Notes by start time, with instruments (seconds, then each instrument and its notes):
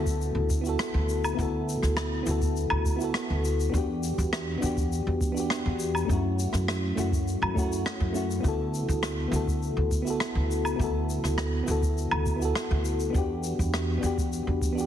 Already playing: upright bass D2, fm electric piano B3 E4 F#4 A4
0.06 kick, shaker
0.21 shaker
0.35 upright bass D2
0.50 kick, shaker
0.61 fm electric piano B3 E4, shaker
0.67 fm electric piano F#4 A4
0.79 cross-stick, shaker
0.94 upright bass D2
1.09 shaker
1.24 low woodblock, shaker
1.34 fm electric piano B3 E4
1.38 upright bass D2, fm electric piano F#4 A4, kick, shaker
1.69 shaker
1.83 upright bass D2, cross-stick, shaker
1.97 cross-stick, shaker
2.23 upright bass D2, fm electric piano B3 E4, shaker
2.28 fm electric piano F#4 A4
2.42 kick, shaker
2.56 shaker
2.70 upright bass D2, low woodblock
2.85 kick, shaker
2.96 fm electric piano B3 E4
3.00 fm electric piano F#4 A4, shaker
3.14 cross-stick, shaker
3.30 upright bass D2
3.45 shaker
3.60 shaker
3.70 upright bass E2, fm electric piano B3 D4
3.74 fm electric piano F#4 G4, kick, shaker
4.04 shaker
4.18 upright bass E2, kick, shaker
4.33 cross-stick, shaker
4.58 fm electric piano B3 D4
4.62 upright bass E2, fm electric piano F#4 G4, shaker
4.77 kick, shaker
4.92 shaker
5.07 upright bass E2
5.21 kick, shaker
5.32 fm electric piano B3 D4
5.37 fm electric piano F#4 G4, shaker
5.50 cross-stick, shaker
5.66 upright bass E2
5.80 shaker
5.95 low woodblock, shaker
6.05 fm electric piano A3 C#4
6.09 upright bass F#2, fm electric piano E4 F#4, kick, shaker
6.39 shaker
6.53 upright bass F#2, cross-stick, shaker
6.68 cross-stick, shaker
6.95 upright bass F#2, fm electric piano A3 C#4 E4 F#4, shaker
7.12 kick, shaker
7.28 shaker
7.42 upright bass F#2, low woodblock
7.54 fm electric piano A3 C#4 E4, kick, shaker
7.59 fm electric piano F#4
7.72 shaker
7.86 cross-stick, shaker
8.00 upright bass F#2, kick
8.13 fm electric piano A3 C#4 E4, shaker
8.17 fm electric piano F#4
8.31 shaker
8.40 upright bass D2, fm electric piano B3 E4, kick
8.45 fm electric piano F#4 A4, shaker
8.74 shaker
8.88 upright bass D2, kick, shaker
9.03 cross-stick, shaker
9.28 upright bass D2, fm electric piano B3 E4
9.33 fm electric piano F#4 A4, shaker
9.48 kick, shaker
9.62 shaker
9.77 upright bass D2
9.91 kick, shaker
10.02 fm electric piano B3 E4
10.07 fm electric piano F#4 A4, shaker
10.20 cross-stick, shaker
10.35 upright bass D2
10.51 shaker
10.65 low woodblock, shaker
10.76 upright bass D2, fm electric piano B3 E4, kick
10.81 fm electric piano F#4 A4, shaker
11.10 shaker
11.24 upright bass D2, cross-stick, shaker
11.38 cross-stick, shaker
11.63 fm electric piano B3 E4
11.68 upright bass D2, fm electric piano F#4 A4, shaker
11.83 kick, shaker
11.98 shaker
12.11 upright bass D2, low woodblock
12.26 kick, shaker
12.36 fm electric piano B3 E4
12.42 fm electric piano F#4 A4, shaker
12.55 cross-stick, shaker
12.71 upright bass D2
12.85 shaker
13.00 shaker
13.10 fm electric piano B3 D4
13.14 upright bass E2, fm electric piano F#4 G4, kick, shaker
13.44 shaker
13.59 upright bass E2, kick, shaker
13.74 cross-stick, shaker
13.98 fm electric piano B3 D4
14.03 upright bass E2, fm electric piano F#4 G4, shaker
14.18 kick, shaker
14.33 shaker
14.47 upright bass E2
14.62 kick, shaker
14.72 fm electric piano B3 D4
14.78 fm electric piano F#4 G4, shaker